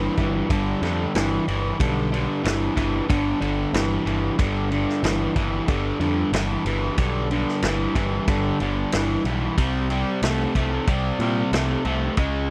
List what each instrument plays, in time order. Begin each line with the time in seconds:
Already playing: overdriven electric guitar G2 E3
0.17 picked electric bass G1, overdriven electric guitar G2 E3, kick, ride
0.50 picked electric bass G1, overdriven electric guitar G2 D3, kick, ride
0.82 picked electric bass F2, overdriven electric guitar G2 D3, snare, ride
1.15 picked electric bass G1, overdriven electric guitar G2 E3, snare, ride
1.48 picked electric bass G1, overdriven electric guitar G2 E3, ride
1.80 picked electric bass B1, overdriven electric guitar G2 D3, kick, ride
2.12 overdriven electric guitar G2 D3, ride
2.44 picked electric bass G1, overdriven electric guitar G2 E3, snare, ride
2.76 picked electric bass G1, overdriven electric guitar G2 E3, kick, ride
3.09 picked electric bass G1, overdriven electric guitar G2 D3, kick, ride
3.41 picked electric bass G1, overdriven electric guitar G2 D3, ride
3.73 picked electric bass G1, overdriven electric guitar G2 E3, snare, ride
4.05 picked electric bass G1, overdriven electric guitar G2 E3, ride
4.38 picked electric bass G1, overdriven electric guitar G2 D3, kick, ride
4.71 overdriven electric guitar G2 D3, ride
4.89 snare
5.03 picked electric bass G1, overdriven electric guitar G2 E3, snare, ride
5.35 picked electric bass G1, overdriven electric guitar G2 E3, kick, ride
5.68 picked electric bass G1, overdriven electric guitar G2 D3, kick, ride
6.00 picked electric bass F2, overdriven electric guitar G2 D3, ride
6.32 picked electric bass G1, overdriven electric guitar G2 E3, snare, ride
6.65 picked electric bass G1, overdriven electric guitar G2 E3, ride
6.97 picked electric bass B1, overdriven electric guitar G2 D3, kick, ride
7.31 overdriven electric guitar G2 D3, ride
7.48 snare
7.62 picked electric bass G1, overdriven electric guitar G2 E3, snare, ride
7.95 picked electric bass G1, overdriven electric guitar G2 E3, kick, ride
8.27 picked electric bass G1, overdriven electric guitar G2 D3, kick, ride
8.60 picked electric bass G1, overdriven electric guitar G2 D3, ride
8.92 picked electric bass G1, overdriven electric guitar G2 E3, snare, ride
9.24 picked electric bass B1, overdriven electric guitar G2 E3, ride
9.57 picked electric bass C2, overdriven electric guitar C3 G3, kick, ride
9.90 overdriven electric guitar C3 G3, ride
10.22 picked electric bass C2, overdriven electric guitar C3 A3, snare, ride
10.55 picked electric bass C2, overdriven electric guitar C3 A3, kick, ride
10.87 picked electric bass C2, overdriven electric guitar C3 G3, kick, ride
11.19 picked electric bass A#2, overdriven electric guitar C3 G3, ride
11.52 picked electric bass C2, overdriven electric guitar C3 A3, snare, ride
11.85 picked electric bass C2, overdriven electric guitar C3 A3, ride
12.17 picked electric bass C#2, overdriven electric guitar C#3 G#3, kick, ride